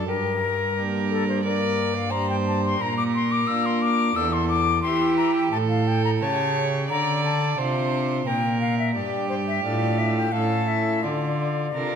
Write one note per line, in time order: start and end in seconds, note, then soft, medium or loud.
0.08 2.77 G2 medium
0.08 0.40 G4 medium
0.08 0.81 A#4 medium
0.41 1.42 A#4 medium
0.77 1.41 A#3 soft
0.77 1.41 D4 soft
0.77 1.41 G4 soft
1.11 1.27 A4 medium
1.29 1.44 C5 medium
1.44 2.11 A#3 soft
1.44 1.97 A#4 medium
1.44 2.12 D5 medium
1.95 2.12 F5 medium
2.11 2.77 A#3 soft
2.11 2.77 D4 soft
2.11 2.77 G4 soft
2.11 2.79 C5 medium
2.11 2.29 A#5 medium
2.30 2.36 G5 medium
2.47 2.64 A5 medium
2.65 2.83 C6 medium
2.80 3.45 A#2 medium
2.80 3.45 A#2 soft
2.80 4.14 A#4 medium
2.80 2.97 A#5 medium
2.98 3.04 D6 medium
3.15 3.33 C6 medium
3.32 3.49 D6 medium
3.47 4.13 A#3 medium
3.47 4.15 A#3 medium
3.47 4.13 D4 soft
3.47 4.13 F4 soft
3.47 3.67 E6 medium
3.66 3.83 C6 medium
3.82 4.18 D6 medium
4.16 4.83 E2 medium
4.16 4.81 E2 soft
4.16 4.83 A4 medium
4.16 4.34 E6 medium
4.33 4.48 C6 medium
4.49 4.82 D6 loud
4.82 5.51 E3 medium
4.82 5.49 E3 medium
4.82 5.49 E4 soft
4.82 5.49 G4 soft
4.82 5.54 G4 medium
4.82 5.17 C6 medium
5.17 5.34 A#5 medium
5.35 5.51 G5 medium
5.52 6.23 A2 medium
5.52 6.18 A2 medium
5.52 6.24 A4 medium
5.52 5.58 A5 loud
5.69 5.89 F5 medium
5.87 6.04 G5 medium
6.05 6.11 A#5 medium
6.21 6.91 C#3 medium
6.21 6.86 C#3 soft
6.21 6.86 C#4 soft
6.21 6.86 G4 soft
6.21 6.89 C#5 medium
6.21 6.65 A5 medium
6.89 7.58 D3 medium
6.89 7.54 D3 medium
6.89 7.60 D5 medium
6.89 7.22 A#5 medium
7.25 7.58 A5 medium
7.58 8.22 C3 medium
7.58 8.25 C3 medium
7.58 8.22 D4 soft
7.58 8.23 F4 soft
7.58 8.28 C5 medium
8.26 8.91 A#2 medium
8.26 8.97 A#2 medium
8.26 8.95 A#4 medium
8.26 8.58 G5 medium
8.61 8.78 F5 medium
8.78 8.94 E5 medium
8.94 9.60 G2 soft
8.94 9.64 G2 medium
8.94 9.59 D4 soft
8.94 9.60 G4 soft
8.94 10.31 G4 medium
8.94 9.28 D5 medium
9.29 9.35 C5 medium
9.47 9.63 E5 medium
9.63 10.29 A2 soft
9.63 10.32 A2 medium
9.63 10.29 D4 soft
9.63 10.29 F4 soft
9.63 10.30 A4 soft
9.63 10.00 D5 medium
9.98 10.16 E5 medium
10.17 10.34 G5 medium
10.32 11.00 A2 soft
10.32 11.06 A2 medium
10.32 10.99 C#4 soft
10.32 11.00 E4 soft
10.32 11.02 A4 medium
10.32 11.00 A4 soft
10.32 10.69 F5 medium
10.68 11.05 E5 medium
11.03 11.71 D3 soft
11.03 11.75 D3 medium
11.03 11.66 F4 medium
11.03 11.95 D5 medium
11.73 11.95 C3 soft
11.73 11.95 C3 medium
11.73 11.95 D4 soft
11.73 11.95 F4 soft
11.73 11.95 A4 soft
11.73 11.95 A#4 medium